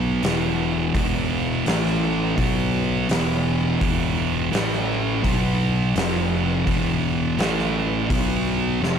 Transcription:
0.00 0.19 B1 medium
0.00 0.21 B2 medium
0.00 0.22 F#3 loud
0.00 0.22 B3 loud
0.23 0.91 E1 medium
0.23 0.93 E2 medium
0.23 0.94 B2 medium
0.23 0.94 E3 loud
0.23 snare loud
0.23 open hi-hat medium
0.94 1.62 E1 loud
0.94 1.65 E2 loud
0.94 1.65 B2 loud
0.94 1.65 E3 loud
0.94 kick loud
0.94 open hi-hat medium
1.65 2.33 A1 loud
1.65 2.36 A2 medium
1.65 2.36 E3 loud
1.65 2.37 A3 loud
1.65 snare loud
1.65 open hi-hat medium
1.86 snare soft
2.36 3.05 B1 medium
2.36 3.07 B2 loud
2.36 3.08 F#3 loud
2.36 3.08 B3 loud
2.36 kick loud
2.36 open hi-hat medium
3.09 3.76 E1 medium
3.09 3.79 E2 medium
3.09 3.80 B2 medium
3.09 3.80 E3 loud
3.09 snare loud
3.09 open hi-hat medium
3.81 4.48 E1 loud
3.81 4.51 E2 loud
3.81 4.52 B2 medium
3.81 4.51 E3 loud
3.81 kick loud
3.81 open hi-hat medium
4.52 5.20 A1 medium
4.52 5.23 A2 medium
4.52 5.24 E3 loud
4.52 5.25 A3 loud
4.52 snare loud
4.52 open hi-hat medium
4.73 snare soft
5.23 5.92 B1 medium
5.23 5.94 B2 medium
5.23 5.94 F#3 loud
5.23 5.95 B3 loud
5.23 kick loud
5.23 open hi-hat medium
5.96 6.63 F1 medium
5.96 6.66 F2 medium
5.96 6.66 C3 loud
5.96 6.67 F3 medium
5.96 snare loud
5.96 open hi-hat medium
6.66 7.35 E1 medium
6.66 7.37 E2 loud
6.66 7.37 B2 loud
6.66 7.37 E3 loud
6.66 kick loud
6.66 open hi-hat medium
7.37 8.05 A1 medium
7.37 8.09 A2 medium
7.37 8.09 E3 loud
7.37 8.09 A3 medium
7.37 snare loud
7.37 open hi-hat medium
7.59 snare soft
8.10 8.77 B1 medium
8.10 8.80 B2 medium
8.10 8.81 F#3 loud
8.10 8.81 B3 loud
8.10 kick loud
8.10 open hi-hat medium
8.81 8.99 F1 medium
8.81 8.99 F2 medium
8.81 8.99 C3 medium
8.81 8.99 F3 medium
8.81 snare medium

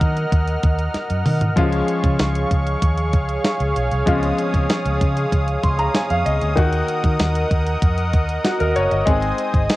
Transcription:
0.00 0.24 D#3 loud
0.00 1.53 F#3 medium
0.00 1.53 A#3 medium
0.00 1.53 D#4 medium
0.00 1.54 F#4 medium
0.00 1.53 A#4 medium
0.00 1.53 D#5 medium
0.00 1.53 F#5 medium
0.00 1.55 F6 medium
0.00 kick medium
0.00 closed hi-hat medium
0.17 closed hi-hat medium
0.32 0.56 D#2 loud
0.32 kick medium
0.32 closed hi-hat medium
0.47 closed hi-hat medium
0.63 0.87 D#2 medium
0.63 kick loud
0.63 closed hi-hat medium
0.79 closed hi-hat medium
0.94 muted fingered electric bass stroke soft
0.94 snare medium
0.94 closed hi-hat medium
1.10 1.22 F#2 medium
1.10 closed hi-hat medium
1.26 1.49 D#3 loud
1.26 mid tom medium
1.26 open hi-hat medium
1.41 closed hi-hat medium
1.41 floor tom medium
1.56 1.81 C#2 loud
1.56 4.03 F3 medium
1.56 4.03 G#3 medium
1.56 4.03 C#4 medium
1.56 4.04 F4 medium
1.56 6.53 G#4 medium
1.56 6.53 C#5 medium
1.56 6.53 F5 medium
1.56 4.04 C#6 medium
1.56 kick loud
1.56 closed hi-hat medium
1.72 closed hi-hat medium
1.88 closed hi-hat medium
2.04 2.16 C#3 medium
2.04 kick medium
2.04 closed hi-hat medium
2.19 2.43 C#2 medium
2.19 snare loud
2.19 closed hi-hat medium
2.19 tambourine medium
2.35 closed hi-hat medium
2.51 2.74 C#2 medium
2.51 kick medium
2.51 closed hi-hat medium
2.67 closed hi-hat medium
2.82 3.14 D#2 medium
2.82 kick medium
2.82 closed hi-hat loud
2.98 closed hi-hat medium
3.13 3.37 C#2 medium
3.13 kick medium
3.13 closed hi-hat medium
3.29 closed hi-hat medium
3.45 snare loud
3.45 closed hi-hat medium
3.45 tambourine medium
3.60 3.72 C#2 medium
3.60 closed hi-hat medium
3.76 3.88 B1 medium
3.76 closed hi-hat medium
3.92 4.03 C2 medium
3.92 closed hi-hat medium
4.06 4.31 C#2 loud
4.06 6.53 F3 medium
4.06 6.53 G#3 medium
4.06 6.53 C#4 medium
4.06 6.54 F4 medium
4.06 9.03 D#6 medium
4.06 kick loud
4.06 closed hi-hat medium
4.23 closed hi-hat medium
4.39 closed hi-hat medium
4.54 4.66 C#2 loud
4.54 kick medium
4.54 closed hi-hat medium
4.70 snare loud
4.70 closed hi-hat medium
4.70 tambourine medium
4.86 4.97 C#2 medium
4.86 closed hi-hat medium
5.01 5.24 C#3 loud
5.01 kick medium
5.01 closed hi-hat medium
5.17 closed hi-hat medium
5.32 5.56 C#2 medium
5.32 kick medium
5.32 closed hi-hat loud
5.48 closed hi-hat medium
5.63 5.87 C#2 loud
5.63 5.78 C6 medium
5.63 kick medium
5.63 closed hi-hat medium
5.79 5.94 A#5 medium
5.79 closed hi-hat soft
5.95 6.09 G#5 medium
5.95 snare loud
5.95 closed hi-hat medium
5.95 tambourine medium
6.10 6.22 F2 medium
6.10 6.25 F5 medium
6.10 closed hi-hat medium
6.26 6.38 C#2 loud
6.26 6.55 D#5 medium
6.26 closed hi-hat medium
6.41 6.53 D2 loud
6.41 closed hi-hat medium
6.56 9.02 D#3 medium
6.56 9.03 A#3 medium
6.56 9.03 D#4 medium
6.56 8.41 F#4 medium
6.56 9.05 A#4 medium
6.56 9.76 D#5 medium
6.56 9.05 F#5 medium
6.56 kick loud
6.56 closed hi-hat medium
6.73 closed hi-hat medium
6.88 closed hi-hat medium
7.04 7.16 D#3 loud
7.04 kick medium
7.04 closed hi-hat soft
7.19 7.43 D#2 medium
7.19 snare loud
7.19 closed hi-hat medium
7.19 tambourine medium
7.35 closed hi-hat medium
7.51 7.74 D#2 medium
7.51 kick medium
7.51 closed hi-hat medium
7.66 closed hi-hat medium
7.82 8.14 F2 medium
7.82 kick medium
7.82 closed hi-hat loud
7.98 closed hi-hat medium
8.13 8.37 D#2 medium
8.13 kick medium
8.13 closed hi-hat medium
8.29 closed hi-hat medium
8.45 8.60 F#4 medium
8.45 snare loud
8.45 closed hi-hat medium
8.45 tambourine medium
8.60 8.72 D#2 medium
8.60 8.75 A#4 medium
8.60 closed hi-hat medium
8.76 8.88 F#1 medium
8.76 8.91 C#5 medium
8.76 closed hi-hat medium
8.91 9.03 G1 medium
8.91 9.21 D#5 medium
8.91 closed hi-hat medium
9.06 9.31 G#1 loud
9.06 9.76 G#3 medium
9.06 9.76 C4 medium
9.06 9.76 D#4 medium
9.06 9.76 G#4 medium
9.06 9.76 C5 medium
9.06 9.76 G#5 medium
9.06 9.76 D#6 medium
9.06 kick loud
9.06 closed hi-hat medium
9.22 closed hi-hat medium
9.38 closed hi-hat medium
9.54 9.66 G#1 medium
9.54 kick medium
9.54 closed hi-hat medium
9.69 snare loud
9.69 closed hi-hat medium
9.69 tambourine medium

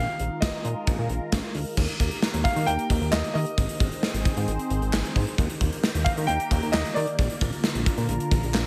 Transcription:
0.00 1.73 D#3 medium
0.00 1.76 G#3 medium
0.00 1.76 F4 medium
0.00 1.76 A#4 medium
0.00 0.43 F5 loud
0.19 0.30 A#1 medium
0.19 closed hi-hat medium
0.41 0.52 A#1 medium
0.41 1.05 D#5 medium
0.41 kick loud
0.41 snare loud
0.41 closed hi-hat medium
0.65 0.75 A#2 loud
0.65 closed hi-hat medium
0.87 0.97 A#1 loud
0.87 kick loud
0.87 closed hi-hat medium
0.98 1.08 A#2 loud
1.10 1.20 A#1 loud
1.10 closed hi-hat medium
1.32 1.42 A#1 loud
1.32 kick loud
1.32 snare loud
1.32 closed hi-hat medium
1.55 1.65 D2 medium
1.55 open hi-hat medium
1.77 1.87 D#2 loud
1.77 7.15 D#3 medium
1.77 3.56 A#3 medium
1.77 3.56 G4 medium
1.77 3.56 A#4 medium
1.77 kick loud
1.77 crash loud
1.88 closed hi-hat medium
2.00 2.10 D#2 medium
2.00 kick loud
2.00 closed hi-hat medium
2.11 closed hi-hat soft
2.22 snare loud
2.34 2.44 D#2 loud
2.34 closed hi-hat medium
2.44 2.68 F5 medium
2.44 kick loud
2.44 closed hi-hat medium
2.56 2.66 D#3 medium
2.56 closed hi-hat medium
2.66 2.78 D#2 loud
2.66 3.14 G5 loud
2.66 closed hi-hat medium
2.79 closed hi-hat medium
2.90 3.00 D#2 loud
2.90 kick loud
2.90 closed hi-hat medium
3.01 3.11 D#2 medium
3.01 closed hi-hat soft
3.11 3.23 D#2 loud
3.11 3.32 D#5 medium
3.11 snare loud
3.11 clap loud
3.24 closed hi-hat soft
3.34 3.45 D#3 loud
3.34 5.11 D#5 medium
3.34 open hi-hat medium
3.46 closed hi-hat medium
3.58 3.68 G#1 loud
3.58 5.36 C4 medium
3.58 5.36 G#4 medium
3.58 5.36 C5 medium
3.58 kick loud
3.58 closed hi-hat medium
3.69 closed hi-hat medium
3.80 3.90 G#1 medium
3.80 kick loud
3.80 closed hi-hat medium
3.92 closed hi-hat medium
4.03 snare loud
4.14 4.24 G#1 loud
4.14 closed hi-hat medium
4.25 kick loud
4.25 closed hi-hat medium
4.37 4.47 G#2 medium
4.37 closed hi-hat medium
4.48 4.58 G#1 loud
4.48 closed hi-hat medium
4.59 closed hi-hat medium
4.70 4.80 G#1 loud
4.70 closed hi-hat medium
4.82 4.92 G#1 medium
4.82 closed hi-hat soft
4.93 5.03 G#1 loud
4.93 snare loud
4.93 clap medium
5.05 closed hi-hat soft
5.16 5.26 G#2 loud
5.16 kick medium
5.16 open hi-hat medium
5.27 closed hi-hat medium
5.38 5.48 D#2 loud
5.38 8.67 A#3 medium
5.38 7.17 G4 medium
5.38 7.17 A#4 medium
5.38 kick loud
5.38 closed hi-hat medium
5.50 closed hi-hat medium
5.61 5.71 D#2 loud
5.61 kick loud
5.61 closed hi-hat medium
5.72 closed hi-hat medium
5.84 snare loud
5.95 6.05 D#2 loud
5.95 closed hi-hat medium
6.04 6.10 F5 loud
6.04 kick loud
6.04 closed hi-hat medium
6.17 6.27 D#3 medium
6.17 closed hi-hat medium
6.27 6.39 D#2 loud
6.27 6.70 G5 loud
6.27 closed hi-hat medium
6.40 closed hi-hat medium
6.51 6.61 D#2 loud
6.51 kick loud
6.51 closed hi-hat medium
6.62 6.72 D#2 medium
6.62 closed hi-hat soft
6.72 6.84 D#2 loud
6.72 6.96 D#5 loud
6.72 snare loud
6.72 clap loud
6.85 closed hi-hat soft
6.94 7.06 D#3 loud
6.94 8.67 D5 medium
6.94 open hi-hat medium
7.07 closed hi-hat medium
7.19 7.29 A#1 loud
7.19 8.67 D3 medium
7.19 8.67 F4 medium
7.19 8.67 A#4 medium
7.19 kick loud
7.19 closed hi-hat medium
7.30 closed hi-hat medium
7.41 7.51 A#1 loud
7.41 kick loud
7.41 closed hi-hat medium
7.53 closed hi-hat medium
7.64 snare loud
7.75 7.85 A#1 loud
7.75 closed hi-hat medium
7.86 kick loud
7.86 closed hi-hat medium
7.98 8.08 A#2 loud
7.98 closed hi-hat medium
8.09 8.19 A#1 loud
8.09 closed hi-hat medium
8.20 closed hi-hat medium
8.31 8.42 A#1 loud
8.31 kick loud
8.31 closed hi-hat medium
8.43 8.53 A#1 loud
8.43 closed hi-hat soft
8.54 8.64 A#1 loud
8.54 snare loud
8.54 clap loud

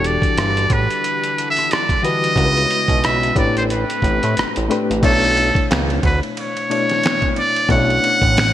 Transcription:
0.00 0.18 E1 medium
0.00 2.34 D3 medium
0.00 0.93 E3 medium
0.00 2.34 E3 medium
0.00 2.34 G3 medium
0.00 0.94 D4 medium
0.00 0.94 F#4 medium
0.00 0.95 G4 medium
0.00 0.98 A4 medium
0.00 2.34 A4 medium
0.00 3.33 F#5 medium
0.04 0.74 D5 loud
0.04 closed hi-hat medium
0.22 0.28 G1 soft
0.22 kick medium
0.22 closed hi-hat medium
0.37 0.67 G1 medium
0.37 cross-stick loud
0.37 closed hi-hat medium
0.57 closed hi-hat soft
0.70 0.88 A1 medium
0.70 1.49 B4 medium
0.70 kick medium
0.70 closed hi-hat medium
0.91 closed hi-hat soft
1.04 closed hi-hat medium
1.24 closed hi-hat medium
1.38 closed hi-hat medium
1.50 1.73 E5 loud
1.57 cross-stick soft
1.57 closed hi-hat soft
1.71 2.05 D5 medium
1.71 cross-stick loud
1.71 closed hi-hat medium
1.89 kick medium
1.89 closed hi-hat soft
2.02 2.34 D3 medium
2.02 2.33 E3 medium
2.02 2.34 F#4 medium
2.02 2.34 G4 medium
2.02 2.35 B4 medium
2.02 3.07 D#5 loud
2.02 closed hi-hat medium
2.24 closed hi-hat soft
2.35 2.66 C#2 loud
2.35 3.35 C#3 medium
2.35 3.34 C#3 medium
2.35 3.36 G#3 medium
2.35 3.34 B3 medium
2.35 3.35 C#4 medium
2.35 3.36 C#4 medium
2.35 3.35 E4 medium
2.35 3.37 E4 medium
2.35 3.37 F#4 medium
2.35 2.45 A#4 medium
2.35 kick medium
2.35 closed hi-hat medium
2.45 3.37 B4 medium
2.57 closed hi-hat soft
2.71 closed hi-hat medium
2.88 3.32 B1 medium
2.88 kick medium
2.88 closed hi-hat medium
3.04 3.37 E5 loud
3.04 cross-stick loud
3.04 closed hi-hat medium
3.23 closed hi-hat soft
3.35 3.85 A1 loud
3.35 4.60 A2 medium
3.35 4.60 A3 medium
3.35 5.02 A3 medium
3.35 4.61 C4 medium
3.35 5.01 C4 medium
3.35 4.61 D4 medium
3.35 5.01 G4 medium
3.35 4.61 G4 medium
3.35 4.61 B4 medium
3.35 3.55 D5 medium
3.35 kick loud
3.35 closed hi-hat medium
3.57 3.64 C5 medium
3.57 closed hi-hat soft
3.70 4.66 B4 medium
3.70 closed hi-hat medium
3.90 closed hi-hat medium
4.02 4.21 A1 medium
4.02 kick medium
4.02 closed hi-hat medium
4.23 4.35 A2 medium
4.23 cross-stick soft
4.23 closed hi-hat soft
4.37 4.45 A1 soft
4.37 cross-stick loud
4.37 closed hi-hat medium
4.56 4.69 A1 medium
4.56 closed hi-hat medium
4.69 5.00 A2 medium
4.69 5.00 A3 medium
4.69 5.01 C4 medium
4.69 5.01 D4 medium
4.69 5.01 G4 medium
4.69 5.02 B4 medium
4.69 cross-stick soft
4.69 closed hi-hat medium
4.90 5.02 A1 medium
4.90 closed hi-hat soft
5.02 5.52 B1 loud
5.02 6.27 B2 medium
5.02 6.27 A3 medium
5.02 6.28 D4 medium
5.02 6.28 E4 medium
5.02 5.66 A4 loud
5.02 6.28 C#5 medium
5.02 kick loud
5.02 crash loud
5.02 ride medium
5.24 ride soft
5.37 ride medium
5.55 5.61 C#2 soft
5.55 kick loud
5.55 ride soft
5.71 6.00 C#2 loud
5.71 finger snap medium
5.71 snare loud
5.71 ride medium
5.90 ride soft
6.03 6.21 D2 medium
6.03 6.20 B4 medium
6.03 kick loud
6.03 ride medium
6.23 ride soft
6.37 7.33 C#5 medium
6.37 ride medium
6.57 ride soft
6.69 7.63 B2 medium
6.69 7.63 A3 medium
6.69 7.63 D4 medium
6.69 7.64 E4 medium
6.69 7.64 C#5 medium
6.69 ride medium
6.89 snare soft
6.89 ride soft
7.03 finger snap medium
7.03 snare loud
7.03 ride medium
7.22 kick medium
7.22 ride soft
7.36 7.68 D5 loud
7.36 ride medium
7.56 ride soft
7.68 8.00 B1 loud
7.68 8.53 B2 medium
7.68 8.53 A3 medium
7.68 7.77 C#4 medium
7.68 8.53 E4 medium
7.68 8.53 C#5 medium
7.68 8.53 F#5 loud
7.68 kick loud
7.68 ride medium
7.76 8.53 D4 medium
7.90 ride soft
8.04 ride medium
8.22 8.53 A1 loud
8.22 kick loud
8.22 ride soft
8.37 finger snap medium
8.37 snare loud
8.37 ride medium

